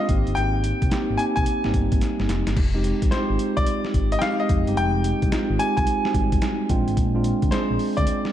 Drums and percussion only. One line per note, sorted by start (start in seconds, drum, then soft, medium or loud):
0.09 kick loud
0.09 closed hi-hat medium
0.27 closed hi-hat soft
0.37 closed hi-hat medium
0.64 closed hi-hat medium
0.82 kick medium
0.82 closed hi-hat medium
0.91 snare loud
0.91 closed hi-hat medium
1.19 closed hi-hat medium
1.37 kick loud
1.37 closed hi-hat medium
1.46 closed hi-hat medium
1.64 snare medium
1.74 kick medium
1.74 closed hi-hat medium
1.92 kick medium
1.92 closed hi-hat medium
2.01 snare medium
2.01 closed hi-hat medium
2.20 snare medium
2.29 snare medium
2.29 closed hi-hat medium
2.47 snare medium
2.47 closed hi-hat medium
2.57 kick loud
2.57 crash medium
2.84 closed hi-hat medium
3.02 kick medium
3.02 closed hi-hat medium
3.12 snare loud
3.12 closed hi-hat medium
3.39 closed hi-hat medium
3.57 kick medium
3.57 closed hi-hat medium
3.67 closed hi-hat medium
3.85 snare medium
3.94 kick medium
3.94 closed hi-hat medium
4.12 closed hi-hat medium
4.21 snare loud
4.21 closed hi-hat medium
4.49 kick loud
4.49 closed hi-hat medium
4.67 closed hi-hat medium
4.77 closed hi-hat medium
5.04 closed hi-hat medium
5.22 kick medium
5.22 closed hi-hat medium
5.32 snare loud
5.32 closed hi-hat medium
5.60 closed hi-hat medium
5.77 kick medium
5.77 closed hi-hat medium
5.87 closed hi-hat medium
6.05 snare medium
6.14 kick medium
6.14 closed hi-hat medium
6.32 kick loud
6.32 closed hi-hat medium
6.42 snare loud
6.42 closed hi-hat medium
6.69 kick loud
6.69 closed hi-hat medium
6.88 closed hi-hat medium
6.97 kick loud
6.97 closed hi-hat medium
7.24 closed hi-hat medium
7.42 kick loud
7.42 closed hi-hat medium
7.52 snare loud
7.52 closed hi-hat medium
7.79 open hi-hat medium
7.97 kick medium
7.97 closed hi-hat medium
8.07 closed hi-hat medium
8.25 snare medium